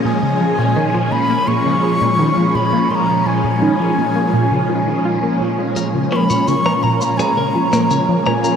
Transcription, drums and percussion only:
5.76 shaker
6.12 percussion blips
6.30 shaker
6.48 shaker
6.66 percussion blips
7.01 shaker
7.19 percussion blips, shaker
7.73 percussion blips, shaker
7.91 shaker
8.26 percussion blips
8.44 shaker

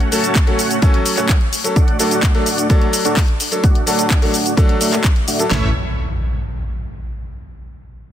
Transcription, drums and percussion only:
0.00 closed hi-hat
0.12 open hi-hat, shaker
0.24 closed hi-hat, shaker
0.35 kick, clap, closed hi-hat, shaker
0.47 closed hi-hat
0.59 open hi-hat, shaker
0.71 closed hi-hat, shaker
0.82 kick, closed hi-hat, shaker
0.94 closed hi-hat
1.06 open hi-hat, shaker
1.17 clap, closed hi-hat, shaker
1.29 kick, clap, closed hi-hat, shaker
1.41 closed hi-hat
1.53 open hi-hat, shaker
1.64 closed hi-hat, shaker
1.76 kick, closed hi-hat, shaker
1.88 closed hi-hat
1.99 open hi-hat, shaker
2.11 closed hi-hat, shaker
2.23 kick, clap, closed hi-hat, shaker
2.35 closed hi-hat
2.46 open hi-hat, shaker
2.58 closed hi-hat, shaker
2.70 kick, closed hi-hat, shaker
2.81 closed hi-hat
2.93 open hi-hat, shaker
3.05 closed hi-hat, shaker
3.17 kick, clap, open hi-hat, shaker
3.28 closed hi-hat
3.40 open hi-hat, shaker
3.52 closed hi-hat, shaker
3.64 kick, closed hi-hat, shaker
3.75 closed hi-hat
3.87 open hi-hat, shaker
3.99 closed hi-hat, shaker
4.10 kick, clap, closed hi-hat, shaker
4.22 open hi-hat
4.34 open hi-hat, shaker
4.46 closed hi-hat, shaker
4.57 kick, closed hi-hat, shaker
4.69 closed hi-hat
4.81 open hi-hat, shaker
4.93 clap, closed hi-hat, shaker
5.04 kick, clap, closed hi-hat, shaker
5.16 closed hi-hat
5.28 open hi-hat, shaker
5.39 closed hi-hat, shaker
5.51 snare, clap, floor tom

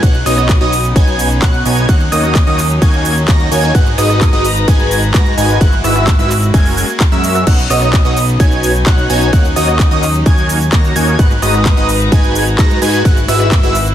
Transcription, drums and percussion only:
0.03 kick, closed hi-hat, ride, shaker
0.14 closed hi-hat
0.26 cross-stick, open hi-hat, shaker
0.38 cross-stick, closed hi-hat, shaker
0.49 kick, clap, closed hi-hat, ride, shaker
0.61 closed hi-hat
0.73 open hi-hat, shaker
0.84 closed hi-hat, shaker
0.96 kick, closed hi-hat, ride, shaker
1.07 closed hi-hat
1.19 open hi-hat, shaker
1.31 closed hi-hat, shaker
1.42 kick, clap, closed hi-hat, ride, shaker
1.54 closed hi-hat
1.66 open hi-hat, shaker
1.77 closed hi-hat, shaker
1.89 kick, closed hi-hat, ride, shaker
2.00 closed hi-hat
2.12 cross-stick, open hi-hat, shaker
2.24 cross-stick, closed hi-hat, shaker
2.35 kick, clap, closed hi-hat, ride, shaker
2.47 closed hi-hat
2.58 clap, open hi-hat, shaker
2.70 closed hi-hat, shaker
2.82 kick, closed hi-hat, ride, shaker
2.93 closed hi-hat
3.05 open hi-hat, shaker
3.17 closed hi-hat, shaker
3.28 kick, clap, closed hi-hat, ride, shaker
3.40 closed hi-hat
3.52 open hi-hat, shaker
3.63 cross-stick, closed hi-hat, shaker
3.75 kick, closed hi-hat, ride, shaker
3.86 closed hi-hat
3.98 cross-stick, open hi-hat, shaker
4.10 cross-stick, closed hi-hat, shaker
4.21 kick, clap, closed hi-hat, ride, shaker
4.33 closed hi-hat
4.45 open hi-hat, shaker
4.56 closed hi-hat, shaker
4.68 kick, closed hi-hat, ride, shaker
4.79 closed hi-hat
4.91 open hi-hat, shaker
5.03 closed hi-hat, shaker
5.14 kick, clap, closed hi-hat, ride, shaker
5.26 closed hi-hat
5.38 open hi-hat, shaker
5.49 closed hi-hat, shaker
5.61 kick, closed hi-hat, ride, shaker
5.73 closed hi-hat
5.84 cross-stick, open hi-hat, shaker
5.96 cross-stick, closed hi-hat, shaker
6.07 kick, clap, closed hi-hat, ride, shaker
6.19 closed hi-hat, shaker
6.31 clap, open hi-hat, shaker
6.42 closed hi-hat, shaker
6.54 kick, closed hi-hat, ride, shaker
6.66 open hi-hat, shaker
6.77 open hi-hat, shaker
6.89 closed hi-hat, shaker
7.00 kick, clap, closed hi-hat, ride, shaker
7.12 closed hi-hat, shaker
7.24 open hi-hat, shaker
7.35 cross-stick, closed hi-hat, shaker
7.47 kick, closed hi-hat, crash, ride, shaker
7.59 closed hi-hat, shaker
7.70 cross-stick, open hi-hat, shaker
7.82 cross-stick, closed hi-hat, shaker
7.93 kick, clap, closed hi-hat, ride, shaker
8.05 closed hi-hat, shaker
8.17 open hi-hat, shaker
8.28 closed hi-hat, shaker
8.40 kick, closed hi-hat, ride, shaker
8.52 closed hi-hat, shaker
8.63 open hi-hat, shaker
8.75 closed hi-hat, shaker
8.86 kick, clap, closed hi-hat, ride, shaker
8.98 closed hi-hat, shaker
9.10 open hi-hat, shaker
9.21 closed hi-hat, shaker
9.33 kick, closed hi-hat, ride, shaker
9.45 closed hi-hat, shaker
9.56 cross-stick, open hi-hat, shaker
9.68 cross-stick, closed hi-hat, shaker
9.79 kick, clap, closed hi-hat, ride, shaker
9.91 closed hi-hat, shaker
10.03 clap, open hi-hat, shaker
10.14 closed hi-hat, shaker
10.26 kick, closed hi-hat, ride, shaker
10.38 closed hi-hat, shaker
10.49 open hi-hat, shaker
10.61 closed hi-hat, shaker
10.72 kick, clap, closed hi-hat, ride, shaker
10.84 closed hi-hat, shaker
10.96 open hi-hat, shaker
11.07 cross-stick, closed hi-hat, shaker
11.19 kick, closed hi-hat, ride, shaker
11.31 closed hi-hat, shaker
11.42 cross-stick, open hi-hat, shaker
11.54 cross-stick, closed hi-hat, shaker
11.66 kick, clap, closed hi-hat, ride, shaker
11.77 closed hi-hat, shaker
11.89 open hi-hat, shaker
12.00 closed hi-hat, shaker
12.12 kick, closed hi-hat, ride, shaker
12.24 closed hi-hat, shaker
12.35 open hi-hat, shaker
12.47 closed hi-hat, shaker
12.59 kick, clap, closed hi-hat, ride, shaker
12.70 closed hi-hat, shaker
12.82 open hi-hat, shaker
12.93 closed hi-hat, shaker
13.05 kick, closed hi-hat, ride, shaker
13.17 closed hi-hat, shaker
13.28 cross-stick, open hi-hat, shaker
13.40 cross-stick, shaker
13.52 kick, clap, closed hi-hat, ride, shaker
13.63 closed hi-hat, shaker
13.75 clap, open hi-hat, shaker
13.87 shaker

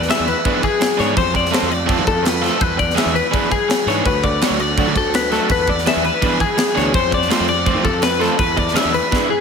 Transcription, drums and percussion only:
0.02 snare
0.10 snare, crash
0.28 crash
0.45 kick, crash
0.63 kick, crash
0.81 snare, crash
0.99 snare, crash
1.17 kick, crash
1.35 kick, crash
1.45 snare
1.53 snare, crash
1.71 crash
1.89 kick, crash
2.07 kick, crash
2.25 snare, crash
2.44 snare, crash
2.61 kick, crash
2.79 kick, crash
2.90 snare
2.97 snare, crash
3.16 crash
3.34 kick, crash
3.52 kick, crash
3.70 snare, crash
3.88 snare, crash
4.05 kick, crash
4.24 kick, crash
4.41 snare, crash
4.59 crash
4.78 kick, crash
4.96 kick, crash
5.14 snare, crash
5.32 snare, crash
5.49 kick, crash
5.67 kick, crash
5.78 snare
5.86 snare, crash
6.04 crash
6.22 kick, crash
6.40 kick, crash
6.58 snare, crash
6.77 snare, crash
6.94 kick, crash
7.12 kick, crash
7.22 snare
7.30 snare, crash
7.48 crash
7.66 kick, crash
7.84 kick, crash
8.02 snare, crash
8.21 snare, crash
8.39 kick, crash
8.57 kick, crash
8.68 snare
8.75 snare, crash
8.94 crash
9.12 kick, snare

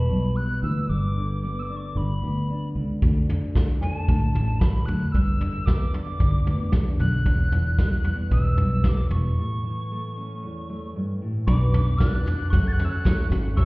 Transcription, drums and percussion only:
3.02 kick, floor tom
3.29 floor tom
3.55 kick, snare, floor tom
3.82 floor tom
4.08 kick, floor tom
4.35 floor tom
4.61 kick, snare, floor tom
4.88 floor tom
5.15 kick, floor tom
5.41 floor tom
5.67 kick, snare, floor tom
5.94 floor tom
6.20 kick, floor tom
6.47 floor tom
6.72 kick, snare, floor tom
7.00 floor tom
7.26 kick, floor tom
7.52 floor tom
7.79 kick, snare, floor tom
8.04 floor tom
8.31 kick, floor tom
8.57 floor tom
8.84 kick, snare, floor tom
9.10 floor tom
11.47 kick, floor tom
11.74 floor tom
12.00 kick, snare, floor tom, tambourine
12.26 floor tom, tambourine
12.53 kick, floor tom, tambourine
12.79 floor tom, tambourine
13.05 kick, snare, floor tom, tambourine
13.31 floor tom, tambourine
13.57 kick, floor tom

